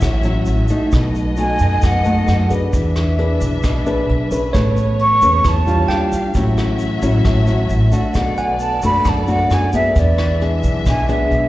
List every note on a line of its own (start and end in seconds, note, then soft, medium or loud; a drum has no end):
0.00 0.44 A1 medium
0.00 0.89 A2 medium
0.00 0.91 C#4 medium
0.00 0.90 F#4 medium
0.00 0.90 E5 medium
0.00 kick medium
0.00 cross-stick medium
0.00 closed hi-hat medium
0.00 shaker medium
0.23 0.66 F#3 medium
0.23 0.66 C#4 medium
0.23 0.66 E4 medium
0.23 closed hi-hat soft
0.23 shaker soft
0.46 0.68 A1 medium
0.46 closed hi-hat soft
0.46 shaker medium
0.68 1.36 A3 medium
0.68 1.36 D#4 medium
0.68 1.37 F#4 medium
0.68 kick soft
0.68 closed hi-hat soft
0.68 shaker medium
0.92 1.56 B1 medium
0.92 1.80 B2 medium
0.92 2.72 B3 medium
0.92 2.72 A4 medium
0.92 2.72 D#5 medium
0.92 kick medium
0.92 cross-stick medium
0.92 closed hi-hat medium
0.92 shaker medium
1.15 closed hi-hat soft
1.15 shaker soft
1.37 2.02 A3 medium
1.37 2.02 D#4 medium
1.37 2.02 F#4 medium
1.37 1.87 G#5 medium
1.37 closed hi-hat soft
1.37 shaker soft
1.59 1.81 F#2 medium
1.59 kick soft
1.59 closed hi-hat soft
1.59 shaker medium
1.82 2.25 F#2 medium
1.82 2.71 F#3 soft
1.82 kick medium
1.82 cross-stick medium
1.82 closed hi-hat medium
1.82 shaker medium
1.86 2.52 F#5 medium
2.05 2.47 A3 medium
2.05 2.47 D#4 medium
2.05 2.47 F#4 medium
2.05 closed hi-hat soft
2.05 shaker soft
2.28 2.49 F#2 medium
2.28 cross-stick medium
2.28 closed hi-hat soft
2.28 shaker medium
2.50 3.15 D4 medium
2.50 3.15 G#4 medium
2.50 3.15 B4 medium
2.50 kick soft
2.50 closed hi-hat soft
2.50 shaker medium
2.73 3.37 E2 medium
2.73 3.61 E3 medium
2.73 4.53 D4 medium
2.73 5.87 B4 medium
2.73 4.53 E5 medium
2.73 kick medium
2.73 closed hi-hat medium
2.73 shaker medium
2.96 cross-stick medium
2.96 closed hi-hat soft
2.96 shaker soft
3.18 3.83 D4 medium
3.18 3.83 G#4 medium
3.18 3.83 B4 medium
3.18 closed hi-hat soft
3.41 3.62 B1 medium
3.41 kick soft
3.41 closed hi-hat soft
3.41 shaker medium
3.63 4.06 B1 medium
3.63 4.52 B2 medium
3.63 kick medium
3.63 cross-stick medium
3.63 closed hi-hat medium
3.63 shaker medium
3.86 4.28 D4 medium
3.86 4.28 G#4 medium
3.86 4.28 B4 medium
3.86 closed hi-hat soft
3.86 shaker soft
4.09 4.30 B1 medium
4.09 closed hi-hat soft
4.31 4.96 C#4 medium
4.31 4.96 G#4 medium
4.31 4.96 B4 medium
4.31 kick soft
4.31 closed hi-hat soft
4.31 shaker medium
4.53 5.18 A1 medium
4.53 5.42 A3 medium
4.53 5.89 B3 medium
4.53 5.35 C#5 medium
4.53 5.89 C#5 medium
4.53 kick medium
4.53 cross-stick medium
4.53 closed hi-hat medium
4.53 shaker medium
4.77 closed hi-hat soft
4.77 shaker soft
4.99 5.50 C#6 medium
4.99 closed hi-hat soft
5.21 5.43 E2 medium
5.21 5.64 C#4 medium
5.21 5.64 G#4 medium
5.21 5.64 B4 medium
5.21 kick soft
5.21 closed hi-hat soft
5.21 shaker medium
5.44 5.87 E2 medium
5.44 5.87 E3 medium
5.44 kick medium
5.44 cross-stick medium
5.44 closed hi-hat medium
5.44 shaker medium
5.48 6.14 A5 medium
5.66 6.31 G3 medium
5.66 6.31 D4 medium
5.66 6.31 F4 medium
5.66 closed hi-hat soft
5.66 shaker soft
5.88 6.10 D#2 medium
5.88 6.34 D4 medium
5.88 6.34 G4 medium
5.88 6.34 F5 medium
5.88 6.53 G5 medium
5.88 cross-stick medium
5.88 closed hi-hat soft
6.12 kick soft
6.12 closed hi-hat soft
6.12 shaker medium
6.34 6.98 A1 medium
6.34 7.23 A2 medium
6.34 6.99 F#3 medium
6.34 8.14 C#4 medium
6.34 6.99 C#4 medium
6.34 6.99 E4 medium
6.34 8.14 F#4 medium
6.34 8.14 E5 medium
6.34 kick medium
6.34 closed hi-hat medium
6.34 shaker medium
6.57 cross-stick medium
6.57 closed hi-hat soft
6.57 shaker soft
6.79 closed hi-hat soft
6.79 shaker medium
7.02 7.23 A1 medium
7.02 7.44 F#3 medium
7.02 7.44 C#4 medium
7.02 7.45 E4 medium
7.02 kick soft
7.02 closed hi-hat soft
7.02 shaker medium
7.25 7.67 A1 medium
7.25 8.13 A2 medium
7.25 kick medium
7.25 cross-stick medium
7.25 closed hi-hat medium
7.25 shaker medium
7.47 7.89 F#3 medium
7.47 7.89 C#4 medium
7.47 7.89 E4 medium
7.47 closed hi-hat soft
7.47 shaker soft
7.69 7.91 A1 medium
7.69 closed hi-hat soft
7.69 shaker medium
7.92 8.79 A3 medium
7.92 8.79 D4 medium
7.92 8.80 F#4 medium
7.92 kick soft
7.92 closed hi-hat soft
7.92 shaker medium
8.14 8.79 B1 medium
8.14 9.03 B2 medium
8.14 9.94 B3 medium
8.14 9.94 A4 medium
8.14 9.94 D5 medium
8.14 8.40 F#5 medium
8.14 kick medium
8.14 cross-stick medium
8.14 closed hi-hat medium
8.14 shaker medium
8.37 9.19 F#5 soft
8.37 8.64 G#5 medium
8.37 closed hi-hat soft
8.37 shaker soft
8.59 8.84 A5 medium
8.59 closed hi-hat soft
8.59 shaker medium
8.82 9.04 F#2 medium
8.82 9.25 A3 medium
8.82 9.25 D4 medium
8.82 9.25 F#4 medium
8.82 9.11 B5 loud
8.82 kick soft
8.82 closed hi-hat soft
8.82 shaker medium
9.05 9.47 F#2 medium
9.05 9.94 F#2 soft
9.05 kick medium
9.05 cross-stick medium
9.05 closed hi-hat medium
9.05 shaker medium
9.09 9.29 A5 medium
9.27 9.69 A3 medium
9.27 9.69 D4 medium
9.27 9.70 F#4 medium
9.27 9.55 F#5 medium
9.27 closed hi-hat soft
9.27 shaker soft
9.50 9.72 F#2 medium
9.50 9.74 G#5 medium
9.50 cross-stick medium
9.50 closed hi-hat soft
9.50 shaker medium
9.73 10.37 B3 medium
9.73 10.38 D4 medium
9.73 10.38 G#4 medium
9.73 10.01 E5 medium
9.73 kick soft
9.73 closed hi-hat soft
9.73 shaker medium
9.96 10.59 E2 medium
9.96 10.84 E3 medium
9.96 11.48 G#3 medium
9.96 11.48 D4 medium
9.96 10.43 D5 medium
9.96 11.48 E5 medium
9.96 kick medium
9.96 closed hi-hat medium
9.96 shaker medium
10.18 cross-stick medium
10.18 closed hi-hat soft
10.18 shaker soft
10.41 11.05 B3 medium
10.41 11.05 D4 soft
10.41 11.06 G#4 medium
10.41 closed hi-hat soft
10.63 10.84 B1 medium
10.63 kick soft
10.63 closed hi-hat soft
10.63 shaker medium
10.86 11.28 B1 medium
10.86 11.48 B2 medium
10.86 11.09 G#5 medium
10.86 kick medium
10.86 cross-stick medium
10.86 closed hi-hat medium
10.86 shaker medium
11.09 11.48 B3 medium
11.09 11.48 D4 medium
11.09 11.48 G#4 medium
11.09 11.48 E5 medium
11.09 closed hi-hat soft
11.09 shaker soft
11.31 11.48 B1 medium
11.31 closed hi-hat soft